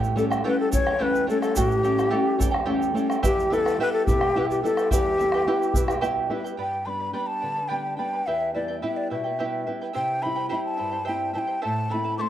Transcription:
Already playing: A2 E4 G4 A4 C#5 G5
0.04 shaker
0.16 G3 A3 C#4 E4 A4 C#5 G5, bombo rim, shaker
0.30 E4 A4 G5, bombo rim, shaker
0.44 G3 A3 C#4 E4 G4 A4 B4 C#5 G5
0.60 A4
0.72 E2 E4 A4 C#5 G5, bombo low, shaker
0.86 E4 A4 G5, bombo rim
0.99 G3 A3 C#4 E4 G4 A4 B4 C#5 G5
1.15 shaker
1.27 G3 A3 C#4 E4 A4 C#5 G5, shaker
1.42 E4 A4 G5, bombo rim, shaker
1.56 A2 E4 G4 A4 C#5 G5, bombo low, shaker
1.71 shaker
1.83 G3 A3 C#4 E4 A4 C#5 G5, bombo rim, shaker
1.98 E4 A4 G5, bombo rim, shaker
2.10 G3 A3 C#4 E4 G4 A4 C#5 G5
2.38 E2 E4 A4 C#5 G5, bombo low, shaker
2.51 E4 A4 G5, bombo rim
2.66 G3 A3 C#4 E4 G4 A4 C#5 G5
2.82 shaker
2.93 G3 A3 C#4 E4 A4 C#5 G5, shaker
3.09 E4 A4 G5, bombo rim, shaker
3.22 E2 E4 G4 B4 E5 G5, bombo low, shaker
3.39 shaker
3.50 G3 B3 E4 A4 B4 E5 G5, bombo rim, shaker
3.65 E4 B4 G5, bombo rim, shaker
3.78 G3 B3 E4 G4 B4 E5 G5
3.93 A4
4.06 B2 E4 G4 B4 E5 G5, bombo low, shaker
4.21 E4 B4 G5, bombo rim
4.35 G3 B3 E4 G4 B4 E5 G5
4.51 G4, shaker
4.63 G3 B3 E4 A4 B4 E5 G5, shaker
4.77 E4 B4 G5, bombo rim, shaker
4.91 E2 E4 G4 B4 E5 G5, bombo low, shaker
5.18 G3 B3 E4 B4 E5 G5, shaker
5.32 E4 B4 G5, bombo rim
5.46 G3 B3 E4 G4 B4 E5 G5
5.62 shaker
5.74 B2 E4 B4 E5 G5, bombo low, shaker
5.88 E4 B4 G5, bombo rim, shaker
6.01 G3 B3 E4 G4 B4 E5 G5, shaker
6.29 G3 B3 E4 B4 E5 G5, bombo rim
6.44 E4 B4 G5, shaker
6.57 G2 G4 B4 D5 G5 B5
6.85 G3 B3 D4 B4 D5 G5 B5 C6
6.89 B5
6.99 B4 D5 B5
7.13 G3 B3 D4 G4 B4 D5 G5 B5
7.27 A5
7.41 D3 B4 D5 G5 B5
7.56 B4 D5 B5
7.68 G3 B3 G4 B4 D5 G5 B5
7.72 D4
7.97 G3 B3 D4 B4 D5 G5 B5
8.13 B4 D5 B5
8.27 E2 E4 G4 B4 E5 G5
8.54 G3 B3 E4 B4 D5 E5 G5
8.68 E4 B4 G5
8.81 G3 B3 E4 G4 B4 E5 G5
8.97 D5
9.10 B2 E4 B4 E5 G5
9.24 E4 B4 G5
9.39 G3 B3 E4 G4 B4 E5 G5
9.67 G3 B3 E4 B4 E5 G5
9.82 E4 B4 G5
9.93 C3 E4 G4 C5 E5 G5
10.21 G3 E4 C5 E5 G5 B5
10.26 C4 E4
10.36 E4 C5 G5
10.49 G3 C4 E4 G4 C5 E5 G5 B5
10.65 A5
10.77 G2 E4 C5 E5 G5
10.91 E4 C5 G5
11.05 G3 C4 E4 G4 C5 E5 G5
11.09 E4
11.33 G3 C4 E4 C5 E5 G5 A5
11.38 G5
11.47 E4 C5 G5
11.62 A2 E4 A4 C5 E5 A5
11.89 A3 E4 A4 E5 A5 B5
11.94 C4 E4
12.04 E4 A4 A5
12.18 A3 C4 E4 A4 C5 E5 A5 C6 D6
12.22 E4

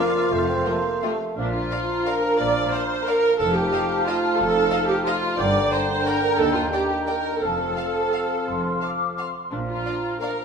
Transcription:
Already playing: F3 A#3 F4 A#4 D5 F5
0.00 D3 A#3
0.31 F1 F2 A3 A4 C5
0.49 C4
0.66 C3 F3 A3 A#3 C4 F4
1.02 C3 F3 A3 C4 F4
1.37 A#1 A#2 F3 D4 F5 A#5
1.54 F4
1.70 D5 F5 A#5
2.06 A#4 D5 F5 A#5
2.39 A#1 A#2 D5
2.72 C5 D5 F5 A#5
3.06 A#4 D5 F5 A#5
3.39 F1 F2 F3 A3 D#4 A4 F5 A5
3.55 G4
3.72 D#5 F5 A5
4.06 F4 D#5 F5 A5
4.38 F1 F2 A4
4.71 D#5 F5 A5
4.88 G4
5.05 F4 D#5 F5 A5
5.37 G1 G2 D3 A#3 D4 D5 G5 A#5
5.71 C5 D5 G5 A#5
6.06 A#4 D5 G5 A#5
6.38 D#2 D#3 A4
6.55 F4
6.72 G4 D5 G5 A#5
7.07 A#4 D5 G5 A#5
7.41 F1 F2 F3 C4 A4 F5 A5
7.76 F5 A5
7.95 A5
8.12 F5 A5
8.47 F1 F2 C6
8.81 F5 A5 D6
9.18 F5 A5 C6
9.51 A#1 A#2 F3 D4 F5 A#5
9.68 F4
9.86 A#3 D4 D5 F5 A#5
10.21 A#3 D4 A#4 D5 F5 A#5

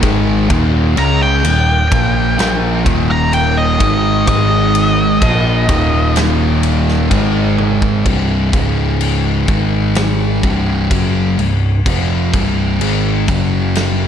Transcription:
0.01 G#1 G#2 D#3 G#3, kick, ride
0.49 D#1 D#2 A#2 D#3, kick, ride
0.97 C#2 C#3 G#3 C#4 A#5, ride
1.22 G5
1.44 D#1 D#2 A#2, ride
1.91 A#1 A#2 F3 A#3, kick, ride
2.38 A#1 A#2 F3 A#3, snare, ride
2.85 D#1 D#2 A#2 D#3, kick, ride
3.11 A#5
3.33 G5, ride
3.57 D#5
3.80 G#1 G#2 D#3 G#3, kick, ride
4.27 G#1 G#2 D#3 G#3 D#5, kick, ride
4.75 ride
5.21 A#1 A#2 F3 A#3, kick, ride
5.69 D#1 D#2 A#2 D#3, kick, ride
6.16 snare, ride
6.63 ride
6.89 snare
7.11 G#1 G#2 D#3 G#3, kick, ride
7.58 high tom
7.82 kick
8.05 C1 C2 G2 C3, kick, crash
8.53 C#1 C#2 G#2 C#3, kick, crash
9.01 crash
9.47 G#1 G#2 D#3 G#3, kick, crash
9.95 snare, crash
10.43 C1 C2 G2 C3, kick, crash
10.90 F#1 F#2 C#3 F#3, kick, crash
11.38 C1 C2 G2, crash
11.85 F1 F2 C3 F3, kick, crash
12.33 C1 C2 G2 C3, kick, crash
12.80 G#1 G#2 D#3 G#3, crash
13.28 F#1 F#2 C#3 F#3, kick, crash
13.76 snare, crash

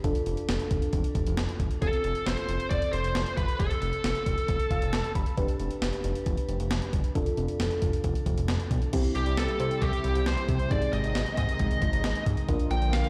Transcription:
0.04 F1 D4 F4 A4, kick, closed hi-hat
0.15 closed hi-hat
0.26 F1, closed hi-hat
0.37 closed hi-hat
0.49 F1, snare, closed hi-hat
0.60 closed hi-hat
0.71 F1, kick, closed hi-hat
0.82 closed hi-hat
0.93 F1, kick, closed hi-hat
1.04 closed hi-hat
1.15 F1, kick, closed hi-hat
1.26 F1, closed hi-hat
1.37 F1, snare, closed hi-hat
1.49 closed hi-hat
1.60 G1, kick, closed hi-hat
1.71 closed hi-hat
1.82 F1 C4 F4 A4, kick, closed hi-hat
1.93 closed hi-hat
2.04 F1, closed hi-hat
2.15 closed hi-hat
2.26 F1 C5, snare, closed hi-hat
2.37 closed hi-hat
2.49 F1, closed hi-hat
2.60 closed hi-hat
2.70 F1 D5, kick, closed hi-hat
2.82 closed hi-hat
2.92 F1 C5, closed hi-hat
3.04 F1, closed hi-hat
3.15 F1, snare, closed hi-hat
3.26 closed hi-hat
3.37 G1 B4, kick, closed hi-hat
3.48 closed hi-hat
3.59 F1 A4, kick, closed hi-hat
3.71 closed hi-hat
3.82 F1, closed hi-hat
3.93 closed hi-hat
4.04 F1, snare, closed hi-hat
4.15 closed hi-hat
4.26 F1, kick, closed hi-hat
4.38 closed hi-hat
4.48 F1, kick, closed hi-hat
4.60 closed hi-hat
4.71 F1 F5, kick, closed hi-hat
4.82 F1, closed hi-hat
4.93 F1 A5, snare, closed hi-hat
5.04 closed hi-hat
5.15 G1 B5, kick, closed hi-hat
5.26 closed hi-hat
5.37 F1 D4 G4 B4, kick, closed hi-hat
5.48 closed hi-hat
5.60 F1, closed hi-hat
5.71 closed hi-hat
5.82 F1, snare, closed hi-hat
5.93 closed hi-hat
6.04 F1, closed hi-hat
6.15 closed hi-hat
6.26 F1, kick, closed hi-hat
6.37 closed hi-hat
6.49 F1, closed hi-hat
6.60 F1, closed hi-hat
6.71 F1, snare, closed hi-hat
6.82 closed hi-hat
6.93 G1, kick, closed hi-hat
7.04 closed hi-hat
7.15 F1 D4 F4 A4, kick, closed hi-hat
7.26 closed hi-hat
7.37 F1, closed hi-hat
7.48 closed hi-hat
7.60 F1, snare, closed hi-hat
7.71 closed hi-hat
7.82 F1, kick, closed hi-hat
7.93 closed hi-hat
8.04 F1, kick, closed hi-hat
8.15 closed hi-hat
8.26 F1, kick, closed hi-hat
8.37 F1, closed hi-hat
8.48 F1, snare, closed hi-hat
8.60 closed hi-hat
8.71 B1, kick, closed hi-hat
8.82 closed hi-hat
8.93 C2 C3 G3 C4 E4 G4, kick, closed hi-hat, crash
9.04 closed hi-hat
9.15 C2 G4, closed hi-hat
9.26 C2, closed hi-hat
9.37 C2 A4, snare, closed hi-hat
9.49 closed hi-hat
9.60 C3, closed hi-hat
9.71 closed hi-hat
9.82 C2 G4, kick, closed hi-hat
9.93 closed hi-hat
10.04 C2, closed hi-hat
10.15 C2, closed hi-hat
10.26 C2 C5, snare, closed hi-hat
10.37 closed hi-hat
10.49 C3, kick, closed hi-hat
10.59 closed hi-hat
10.71 G#1 D#3 G#3 C4 D#4 G#4 D5, kick, closed hi-hat
10.82 closed hi-hat
10.93 G#1 D#5, closed hi-hat
11.04 G#1, closed hi-hat
11.15 G#1, snare, closed hi-hat
11.26 closed hi-hat
11.37 G#2 D#5, kick, closed hi-hat
11.49 closed hi-hat
11.59 G#1, kick, closed hi-hat
11.71 closed hi-hat
11.82 G#1, kick, closed hi-hat
11.93 G#1, closed hi-hat
12.04 G#1, snare, closed hi-hat
12.15 closed hi-hat
12.26 G#2, kick, closed hi-hat
12.37 closed hi-hat
12.49 A#1 D3 F3 A#3 D4 F4 A#4, kick, closed hi-hat
12.60 closed hi-hat
12.71 A#1 G5, closed hi-hat
12.82 A#1, closed hi-hat
12.93 A#1 F5, snare, closed hi-hat
13.04 closed hi-hat

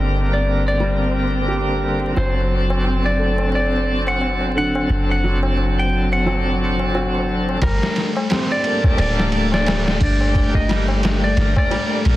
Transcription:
Already playing: G1 D3 G3 A#3 C4 A#4
0.33 D5
0.68 D5
0.80 G3
1.48 G4
2.13 F#1 F#3 C4, tabla na
2.18 D4 A4 C5
2.36 tabla na
2.70 tabla na
2.84 C4, tabla na
3.04 D5, tabla na
3.19 A3
3.38 tabla na
3.52 D5, tabla na
3.72 tabla na
4.07 F#5, tabla na
4.21 tabla na
4.41 tabla na
4.55 D3 F#5
4.75 tabla na
4.89 F#1, tabla na
5.10 F#5, tabla na
5.24 F#3
5.43 tabla na
5.57 tabla na
5.78 G5, tabla na
6.12 F#5, tabla na
6.26 F#3, tabla na
6.46 tabla na
6.79 tabla na
6.94 F#4, tabla na
7.15 tabla na
7.49 tabla na
7.62 G1 G3 A3 A#4, kick, ride, tabla na
7.82 snare, tabla na
7.96 snare, ride
8.16 tabla na
8.30 C4, snare, ride, tabla na
8.50 D5, tabla na
8.61 G3 A#3, ride
8.65 D4 A4
8.84 kick, tabla na
8.97 D1 D5, ride, tabla na
9.18 snare, tabla na
9.32 ride
9.52 D5, snare, tabla na
9.66 snare, ride, tabla na
9.82 G3 A#3
9.87 D3 G4, snare, tabla na
10.00 G1 D3 D5, kick, open hi-hat
10.21 tabla na
10.34 kick, ride, tabla na
10.54 D#5, kick, tabla na
10.69 G3, snare, ride
10.88 tabla na
11.03 snare, ride, tabla na
11.22 D5, tabla na
11.33 G1 G3 A#3, ride
11.38 D4 A#4, snare
11.56 D5, kick, tabla na
11.70 G3, ride, tabla na
11.91 tabla na
12.05 A#1, ride

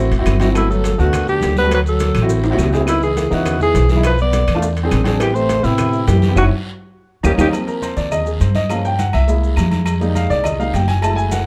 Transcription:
Already playing: A3 C4 E4 F#4 C5
0.11 G#1, high bongo, high conga, high timbale, maracas
0.19 C4 E4 F#4
0.26 G1, high bongo, low bongo, high conga, high timbale, short guiro, claves, maracas
0.40 C4 E4 F#4, high bongo, high conga, high timbale, short guiro, maracas
0.47 C4 E4 F#4
0.54 B2 A3 B3 E4 F#4, high bongo, high conga, high timbale, long guiro, claves, maracas
0.70 F#3 A4, high conga, maracas
0.84 high bongo, high conga, high timbale, short guiro, maracas
0.98 D2 D3 A3 B3 F#4, high conga, short guiro, maracas
1.13 high bongo, high conga, low conga, high timbale, long guiro, claves, maracas
1.27 D3 G4, high conga, low conga, maracas
1.41 D2, high bongo, low bongo, high conga, high timbale, low timbale, short guiro, maracas
1.56 G3 B4, high conga, short guiro, maracas
1.64 A3 B3 F#4
1.70 high bongo, high conga, high timbale, long guiro, claves, maracas
1.74 F#3 B4
1.85 F#3 A4, high conga, maracas
2.00 high bongo, high conga, high timbale, short guiro, maracas
2.15 A1, high bongo, high conga, high timbale, short guiro, claves, maracas
2.22 C4 E4 F#4
2.29 high bongo, high conga, long guiro, maracas
2.43 high bongo, high conga, high timbale, maracas
2.50 C4 E4 F#4, low timbale
2.58 C#2, high bongo, low bongo, high conga, short guiro, claves, maracas
2.63 low timbale
2.72 C4 E4 G#4, high bongo, high conga, low timbale, short guiro, maracas
2.80 C4 E4 F#4
2.86 C#3 B3 D#4 E4, high bongo, high conga, high timbale, long guiro, claves, maracas
3.01 E3 G#4, high conga, maracas
3.16 high bongo, high conga, high timbale, short guiro, maracas
3.30 E2 C#3 B3 D#4 E4 F#4, high conga, short guiro, maracas
3.45 high bongo, high conga, low conga, high timbale, long guiro, claves, maracas
3.60 E3 G#4, high conga, low conga, maracas
3.74 B1, high bongo, low bongo, high conga, high timbale, short guiro, maracas
3.88 E3 G#4, high conga, short guiro, maracas
3.96 B3 D#4 E4
4.03 F3 B4, high bongo, high timbale, claves, maracas
4.18 B3 D5, high conga, maracas
4.33 high bongo, high conga, high timbale, short guiro, maracas
4.48 E2, high bongo, high conga, high timbale, short guiro, claves, maracas
4.55 A3 D4 F4
4.62 high bongo, high conga, long guiro, maracas
4.76 high bongo, high conga, high timbale, maracas
4.83 C4 D4 G#4
4.91 A1, high bongo, low bongo, high conga, high timbale, short guiro, claves, maracas
5.04 C4 D4 G#4, high bongo, high conga, high timbale, short guiro, maracas
5.12 C4 D4 G#4
5.19 E3 B3 C4 G4, high bongo, high timbale, claves, maracas
5.34 A3 C5, high conga, maracas
5.49 high bongo, high conga, high timbale, short guiro, maracas
5.63 A2 C3 B3 C4 E4 G4, high conga, short guiro, maracas
5.78 high bongo, high conga, low conga, high timbale, long guiro, claves, maracas
5.93 high conga, maracas
6.07 F#2 E3 G4, high bongo, low bongo, high conga, high timbale, low timbale, short guiro, maracas
6.22 high conga, short guiro, maracas
6.28 B3 C4 G4
6.36 F#1 F#3 C#4 E4 F#4, low bongo, high conga, high timbale, long guiro, claves, maracas
7.23 D#2 D#3 A#3 C#4 D#4 G4, low bongo, high conga, high timbale, long guiro, claves, maracas
7.37 D#2 D#3 A#3 C#4 D#4 G4, low bongo, high conga, high timbale, long guiro, claves, maracas
7.52 F3 A#3 C4, cowbell, high conga, low agogo, long guiro, claves, maracas
7.67 A#4, cowbell, high conga, maracas
7.82 C5, cowbell, high conga, low agogo, short guiro, maracas
7.96 D#2 D5, cowbell, high conga, short guiro, maracas
8.11 D#5, cowbell, high conga, low conga, low agogo, claves, maracas
8.26 G#4, maracas
8.40 G2 C5, cowbell, high conga, low agogo, short guiro, maracas
8.55 D#5, cowbell, high conga, low agogo, short guiro, maracas
8.69 F3 A#3 C#4 F5, cowbell, high conga, low agogo, long guiro, claves, maracas
8.85 G5, maracas
8.99 F#5, cowbell, high conga, low agogo, short guiro, maracas
9.13 C2 E5, high conga, low agogo, short guiro, claves, maracas
9.28 G#3 A#3 E4, cowbell, long guiro, maracas
9.43 high conga, maracas
9.56 F2, cowbell, high conga, low timbale, low agogo, short guiro, claves, maracas
9.71 cowbell, high conga, low agogo, short guiro, maracas
9.86 cowbell, high conga, low agogo, long guiro, claves, maracas
10.01 G3 G#3 A#3 D#4, cowbell, maracas
10.15 F5, cowbell, high conga, low agogo, short guiro, maracas
10.30 C2 D5, cowbell, high conga, short guiro, maracas
10.44 D#5, cowbell, high conga, low conga, low agogo, long guiro, claves, maracas
10.59 G3 G#3 A#3 D#4 F5, high conga, maracas
10.73 F#1 G5, cowbell, high conga, low timbale, low agogo, short guiro, maracas
10.88 G#5, cowbell, high conga, low agogo, short guiro, maracas
11.02 G#3 A3 E4 A5, cowbell, high conga, low agogo, long guiro, claves, maracas
11.16 G#5, high conga, maracas
11.31 F#5, cowbell, high bongo, high conga, low agogo, short guiro, maracas

